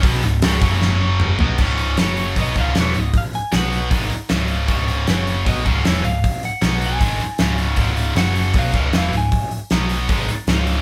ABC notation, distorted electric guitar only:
X:1
M:4/4
L:1/8
Q:1/4=155
K:Gb
V:1 name="Distorted electric guitar" clef=bass
[C,G,C] [D,,A,,] [D,,A,,D,] [G,,D,G,]4 [C,G,C] | [D,,A,,D,]2 [G,,D,G,]2 [C,G,C] [D,,A,,D,] [_F,,C,_F,] [D,,A,,] | z2 [C,G,C]2 [A,,E,A,] z [D,,A,,D,]2 | [D,,A,,D,]2 [G,,D,G,]2 [C,G,C] [D,,A,,D,] [_F,,C,_F,] [D,,A,,] |
z2 [C,G,C]2 [A,,E,A,] z [D,,A,,D,]2 | [D,,A,,D,]2 [G,,D,G,]2 [C,G,C] [D,,A,,D,] [_F,,C,_F,] [D,,A,,] | z2 [C,G,C]2 [A,,E,A,] z [D,,A,,D,]2 |]